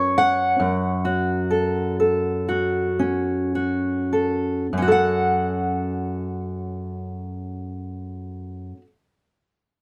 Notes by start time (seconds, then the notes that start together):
Already playing: F#2 C#4 C#5
0.18 F#5
0.60 F#2
1.05 F#4
1.51 A4
2.00 A4
2.49 F#4
2.99 C#4
3.55 F#4
4.13 A4
4.73 F#2
4.78 C#4
4.82 F#4
4.88 A4
4.92 F#5